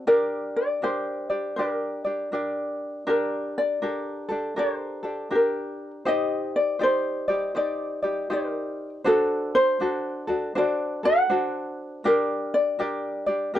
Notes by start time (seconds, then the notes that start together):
0.07 D4 G4 A#4 D5
0.56 D5
0.82 D4 G4 A#4 C5 D5
1.30 D4 G4 D5
1.56 D4 G4 A#4 D5
2.05 D4 G4 D5
2.32 D4 G4 A#4 D5
3.07 D4 G4 A#4
3.58 D5
3.82 D4 G4 A4 A#4
4.29 D4 G4 A4
4.56 D4 G4 A4 A#4 C5
5.03 D4 G4 A4
5.30 D4 G4 A#4
5.35 A#4
6.05 D#4 G4 C5 D#5
6.56 D5
6.79 D#4 G4 C5 D5
6.83 C5
7.28 D#4 G4 D5
7.55 D#4 G4 C5 D5
8.02 D#4 G4 D5
8.30 D#4 G4 A#4 C5 D5
9.04 D4 F#4 A4 C5
9.55 C5
9.80 D4 F#4 A4 C5
10.27 D4 F#4 A4
10.55 D4 F#4 A4 C5 D5
11.03 D4 F#4 A4 F#5
11.30 D4 F#4 A4 C5
12.04 D4 G4 A#4 D5
12.54 D5
12.79 D4 G4 A#4 D5
13.26 D4 G4 D5
13.54 D4 G4 A#4 D5